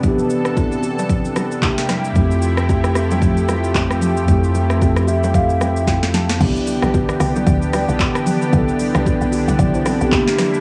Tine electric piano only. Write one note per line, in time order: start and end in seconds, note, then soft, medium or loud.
0.00 1.58 C3 medium
0.00 1.59 B3 medium
0.00 1.60 D4 medium
0.06 1.61 E4 medium
0.06 1.62 G4 medium
1.61 2.15 C3 medium
1.61 2.15 A#3 medium
1.61 2.16 D4 medium
1.61 2.16 E4 medium
1.65 2.17 G4 medium
2.12 4.22 F2 medium
2.12 4.23 A3 medium
2.16 4.24 C4 medium
2.16 4.25 E4 medium
2.16 4.26 G4 medium
4.24 6.35 F2 medium
4.24 6.36 A3 medium
4.24 6.37 C4 medium
4.30 6.38 E4 medium
4.30 4.38 G4 medium
4.39 6.42 A4 medium
5.08 5.33 E5 medium
5.35 5.59 F5 medium
5.61 5.86 G5 medium
5.88 6.12 G5 medium
6.14 6.39 A5 medium
6.37 8.47 B3 medium
6.37 8.49 D4 medium
6.42 8.50 E4 medium
6.42 8.51 G4 medium
8.49 9.55 B3 medium
8.49 9.57 D4 medium
8.55 9.58 E4 medium
8.55 9.59 A4 medium
9.59 9.74 D5 medium
9.75 9.86 E4 medium
9.75 9.85 C5 medium
9.86 10.01 C4 medium
9.86 10.00 A4 medium
10.01 10.27 B3 medium
10.01 10.13 G4 medium
10.11 10.60 A#3 medium
10.11 10.60 D4 medium
10.11 10.60 E4 medium
10.11 10.60 G4 medium